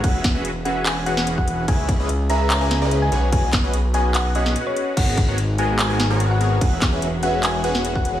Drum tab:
CC |x-------x-------|x-------x-------|x-------x-------|x-------x-------|
HH |x-x-x-x-x-x-x-x-|x-x-x-x-x-x-x-x-|x-x-x-x-x-x-x-x-|x-x-x-x-x-x-x-x-|
CP |--------x-------|--------x-------|--x-----x-------|--------x-------|
SD |--o--------o----|----------o-----|--o--------o----|----------o-----|
BD |o-o----------o--|o-o-------------|o-o-------------|o-o-------------|

CC |x-------x-------|
HH |x-x-x-x-x-x-x-x-|
CP |--x-----x-------|
SD |--o--------o----|
BD |o-o----------o--|